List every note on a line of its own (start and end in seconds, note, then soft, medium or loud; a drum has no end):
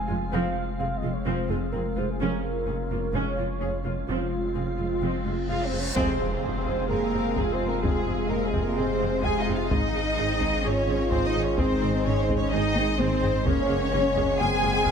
0.00 4.05 F1 medium
0.00 4.05 G#3 medium
0.00 2.21 C4 medium
0.00 4.05 F4 medium
0.00 4.05 F5 medium
0.00 0.35 G#5 loud
0.08 0.17 F1 soft
0.08 0.18 F2 soft
0.08 0.16 G#3 medium
0.08 0.16 F4 soft
0.32 0.41 F1 medium
0.32 0.42 F2 medium
0.32 0.55 F3 medium
0.32 0.55 C4 medium
0.32 0.80 F5 medium
0.78 0.89 F1 soft
0.78 0.90 F2 soft
0.78 0.87 C4 soft
0.78 0.86 G#4 soft
0.78 0.98 F5 medium
0.97 1.14 D#5 medium
1.02 1.12 F1 soft
1.02 1.14 F2 soft
1.02 1.10 G#3 soft
1.02 1.10 F4 soft
1.13 1.29 C#5 medium
1.26 1.34 F1 medium
1.26 1.37 F2 medium
1.26 1.49 F3 medium
1.26 1.48 C4 medium
1.26 1.51 C5 medium
1.50 1.58 F1 medium
1.50 1.61 F2 medium
1.50 1.58 G#3 medium
1.50 1.58 F4 medium
1.50 1.72 G#4 medium
1.72 1.82 F1 soft
1.72 1.83 F2 soft
1.72 1.82 C4 soft
1.72 1.82 G#4 soft
1.72 1.99 A#4 medium
1.97 2.05 F1 soft
1.97 2.07 F2 soft
1.97 2.05 G#3 soft
1.97 2.05 F4 medium
1.97 2.09 C5 medium
2.10 2.22 G#4 medium
2.21 2.29 F1 medium
2.21 2.30 F2 medium
2.21 2.43 G#3 medium
2.21 2.43 C#4 medium
2.21 4.08 C#4 medium
2.21 3.16 A#4 loud
2.67 2.75 F1 soft
2.67 2.76 F2 soft
2.67 2.75 C#4 soft
2.67 2.76 G#4 soft
2.91 2.99 F1 soft
2.91 3.00 F2 soft
2.91 2.99 A#3 soft
2.91 2.99 F4 soft
3.14 3.23 F1 medium
3.14 3.24 F2 medium
3.14 3.36 G#3 medium
3.14 3.37 C#4 medium
3.14 4.08 C#5 loud
3.38 3.47 F1 soft
3.38 3.48 F2 soft
3.38 3.46 A#3 soft
3.38 3.46 F4 soft
3.61 3.70 F1 soft
3.61 3.71 F2 soft
3.61 3.69 C#4 soft
3.61 3.69 G#4 soft
3.85 3.94 F1 soft
3.85 3.95 F2 soft
3.85 3.93 A#3 soft
3.85 3.93 F4 soft
4.08 5.92 F1 medium
4.08 4.17 F1 medium
4.08 4.19 F2 medium
4.08 4.31 F3 medium
4.08 5.92 G#3 medium
4.08 4.30 C4 medium
4.08 5.94 C4 medium
4.08 5.92 F4 medium
4.08 5.47 F4 medium
4.08 5.92 F5 medium
4.08 reverse cymbal medium
4.55 4.64 F1 soft
4.55 4.65 F2 soft
4.55 4.64 C4 soft
4.55 4.63 G#4 soft
4.78 4.88 F1 soft
4.78 4.88 F2 soft
4.78 4.86 G#3 soft
4.78 4.86 F4 soft
5.02 5.10 F1 medium
5.02 5.11 F2 medium
5.02 5.24 F3 soft
5.02 5.24 C4 soft
5.25 5.34 F1 soft
5.25 5.35 F2 soft
5.25 5.34 G#3 soft
5.25 5.33 F4 soft
5.49 5.57 F1 soft
5.49 5.59 F2 soft
5.49 5.57 C4 soft
5.49 5.64 F4 medium
5.49 5.57 G#4 soft
5.49 5.66 F5 medium
5.49 5.64 F5 medium
5.49 5.64 F5 soft
5.65 5.81 C4 medium
5.65 5.79 C5 medium
5.65 5.80 C5 soft
5.72 5.81 F1 soft
5.72 5.81 F2 soft
5.72 5.81 G#3 soft
5.72 5.80 F4 soft
5.80 5.96 C#4 soft
5.80 5.95 C#5 medium
5.80 5.96 C#5 soft
5.95 9.72 F1 medium
5.95 6.18 F2 medium
5.95 9.67 C3 medium
5.95 9.67 G#3 medium
5.95 9.67 C4 medium
5.95 6.86 C4 medium
5.95 6.18 C4 medium
5.95 6.18 G#4 medium
5.95 9.67 G#4 medium
5.95 6.85 C5 medium
5.95 6.85 C5 loud
5.95 6.86 C5 medium
5.95 9.67 F5 medium
5.95 taiko medium
5.95 impact medium
6.19 6.27 F2 soft
6.19 6.28 C4 soft
6.19 6.27 G#4 soft
6.43 6.51 F2 soft
6.43 6.52 C4 soft
6.43 6.52 G#4 soft
6.66 6.74 F2 soft
6.66 6.75 C4 soft
6.66 6.75 G#4 soft
6.66 taiko medium
6.89 6.98 F2 medium
6.89 7.37 A#3 medium
6.89 6.98 C4 soft
6.89 7.33 G#4 medium
6.89 6.98 G#4 soft
6.89 7.38 A#4 medium
6.89 7.37 A#4 medium
7.13 7.21 F2 medium
7.13 7.22 C4 soft
7.13 7.22 G#4 soft
7.36 7.45 F2 soft
7.36 7.52 G#3 medium
7.36 7.45 C4 soft
7.36 8.30 F4 medium
7.36 7.44 G#4 soft
7.36 7.54 G#4 medium
7.36 7.52 G#4 medium
7.36 7.53 G#4 medium
7.36 taiko medium
7.52 7.68 C4 medium
7.52 7.68 C5 medium
7.52 7.69 C5 medium
7.52 7.68 C5 medium
7.59 7.68 F2 soft
7.59 7.67 C4 soft
7.59 7.67 G#4 soft
7.67 7.83 A#3 medium
7.67 7.83 A#4 medium
7.67 7.84 A#4 medium
7.82 7.91 F2 soft
7.82 8.30 G#3 medium
7.82 7.91 C4 medium
7.82 8.30 G#4 medium
7.82 8.29 G#4 medium
7.82 7.91 G#4 soft
7.82 8.30 G#4 medium
7.82 taiko medium
8.06 8.15 F2 soft
8.06 8.14 C4 soft
8.06 8.14 G#4 soft
8.29 8.37 F2 soft
8.29 8.46 A#3 medium
8.29 8.38 C4 soft
8.29 8.77 F4 medium
8.29 8.38 G#4 soft
8.29 8.48 A#4 medium
8.29 8.46 A#4 medium
8.46 8.62 G#3 medium
8.46 8.62 G#4 medium
8.46 8.64 G#4 medium
8.53 8.63 F2 medium
8.53 8.61 C4 soft
8.53 8.61 G#4 soft
8.53 taiko medium
8.61 8.77 A#3 medium
8.61 8.77 A#4 medium
8.77 8.86 F2 medium
8.77 9.24 C4 medium
8.77 8.86 C4 soft
8.77 8.85 G#4 medium
8.77 9.24 G#4 medium
8.77 9.23 C5 medium
8.77 9.25 C5 medium
8.77 9.24 C5 medium
9.01 9.09 F2 medium
9.01 9.09 C4 soft
9.01 9.09 G#4 soft
9.24 9.33 F2 soft
9.24 9.33 C4 medium
9.24 9.71 F4 medium
9.24 9.40 G#4 medium
9.24 9.33 G#4 medium
9.24 9.43 G#5 loud
9.24 9.40 G#5 medium
9.24 taiko medium
9.39 9.56 D#4 medium
9.39 9.55 D#5 medium
9.39 9.56 D#5 medium
9.39 9.58 D#5 medium
9.48 9.56 F2 medium
9.48 9.56 C4 soft
9.48 9.56 G#4 soft
9.54 9.71 F4 medium
9.54 9.70 F5 medium
9.54 9.71 F5 medium
9.54 9.72 F5 medium
9.69 13.47 G#1 medium
9.69 9.79 G#1 medium
9.69 13.29 D#3 medium
9.69 13.29 G#3 medium
9.69 13.42 G#3 medium
9.69 9.78 C4 soft
9.69 13.42 D#4 medium
9.69 10.18 D#4 medium
9.69 10.65 D#4 medium
9.69 9.78 G#4 medium
9.69 13.42 G#4 medium
9.69 10.62 D#5 medium
9.69 10.64 D#5 loud
9.69 13.46 D#5 medium
9.69 10.65 D#5 medium
9.69 taiko medium
9.94 10.02 G#1 medium
9.94 10.03 C4 soft
9.94 10.02 G#4 soft
10.17 10.26 G#1 medium
10.17 10.25 C4 soft
10.17 10.65 C4 medium
10.17 10.26 G#4 soft
10.41 10.49 G#1 medium
10.41 10.49 C4 soft
10.41 10.49 G#4 soft
10.41 taiko medium
10.64 10.72 G#1 medium
10.64 10.72 C4 medium
10.64 11.12 C#4 medium
10.64 11.57 F4 medium
10.64 10.72 G#4 medium
10.64 11.09 C#5 medium
10.64 11.12 C#5 medium
10.88 10.96 G#1 medium
10.88 10.96 C4 medium
10.88 10.96 G#4 soft
11.10 11.19 G#1 medium
11.10 11.19 C4 medium
11.10 11.27 C4 medium
11.10 11.19 G#4 medium
11.10 11.26 C5 loud
11.10 11.27 C5 medium
11.10 taiko medium
11.27 11.44 D#4 medium
11.27 11.43 D#5 medium
11.27 11.45 D#5 medium
11.27 11.43 D#5 medium
11.34 11.43 G#1 medium
11.34 11.43 C4 medium
11.34 11.42 G#4 medium
11.42 11.59 C#4 medium
11.42 11.58 C#5 medium
11.42 11.59 C#5 medium
11.58 11.67 G#1 medium
11.58 11.68 C4 medium
11.58 12.06 C4 medium
11.58 12.53 D#4 medium
11.58 11.67 G#4 medium
11.58 12.06 C5 medium
11.58 12.05 C5 medium
11.58 taiko medium
11.80 11.90 G#1 medium
11.80 11.88 C4 soft
11.80 11.89 G#4 medium
12.05 12.14 G#1 medium
12.05 12.13 C4 medium
12.05 12.22 C#4 medium
12.05 12.13 G#4 medium
12.05 12.23 C#5 medium
12.05 12.21 C#5 medium
12.21 12.37 C4 medium
12.21 12.37 C5 medium
12.21 12.38 C5 medium
12.21 12.37 C5 medium
12.29 12.37 G#1 medium
12.29 12.37 C4 medium
12.29 12.37 G#4 medium
12.29 taiko medium
12.36 12.52 C#4 medium
12.36 12.52 C#5 medium
12.36 12.50 C#5 medium
12.51 12.61 G#1 medium
12.51 12.99 C4 medium
12.51 12.61 C4 medium
12.51 13.00 D#4 medium
12.51 12.61 G#4 medium
12.51 12.99 D#5 loud
12.51 12.98 D#5 medium
12.51 12.99 D#5 medium
12.76 12.84 G#1 medium
12.76 12.85 C4 medium
12.76 12.85 G#4 medium
12.76 taiko high medium
12.97 13.07 G#1 medium
12.97 13.08 C4 medium
12.97 13.46 C4 medium
12.97 13.46 D#4 medium
12.97 13.07 G#4 medium
12.97 13.45 C5 loud
12.97 13.46 C5 medium
12.97 taiko high medium
13.22 13.31 G#1 medium
13.22 13.30 C4 medium
13.22 13.30 G#4 medium
13.22 taiko low medium
13.44 13.54 F#1 medium
13.44 14.91 F#1 medium
13.44 14.91 A#2 medium
13.44 14.91 G#3 medium
13.44 14.91 A#3 medium
13.44 13.55 A#3 medium
13.44 13.93 A#3 medium
13.44 14.38 C#4 medium
13.44 13.54 G#4 medium
13.44 14.91 G#4 medium
13.44 14.40 C#5 loud
13.44 14.40 C#5 medium
13.44 14.38 C#5 medium
13.44 14.91 F#5 medium
13.44 taiko medium
13.69 13.77 F#1 medium
13.69 13.77 A#3 medium
13.69 13.77 G#4 medium
13.92 14.02 F#1 medium
13.92 14.00 A#3 medium
13.92 14.41 C#4 medium
13.92 14.00 G#4 medium
14.16 14.25 F#1 medium
14.16 14.25 A#3 medium
14.16 14.24 G#4 medium
14.16 taiko medium
14.38 14.49 F#1 medium
14.38 14.46 A#3 medium
14.38 14.91 C4 medium
14.38 14.47 G#4 medium
14.38 14.91 G#4 medium
14.38 14.91 G#5 loud
14.38 14.91 G#5 medium
14.62 14.72 F#1 medium
14.62 14.70 A#3 medium
14.62 14.70 G#4 medium
14.85 14.91 F#1 medium
14.85 14.91 A#3 medium
14.85 14.91 G#4 medium
14.85 taiko medium